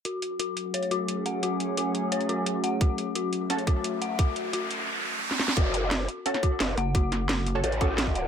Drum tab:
HH |x-x-x-x-xxx-x-x-|x-x-x-x-xxx-x-x-|x-x-x-x-xxx-x-x-|x-x-x-x---------|
SD |----------------|----------------|----------------|-------------ooo|
BD |----------------|----------------|o---------o-----|o---------------|

HH |x-x-x-x-xxx-x-x-|x-x-x-x-xxx-x-x-|
SD |----o----o--o---|--o-o-------o---|
BD |o---------o-----|o---------o--o--|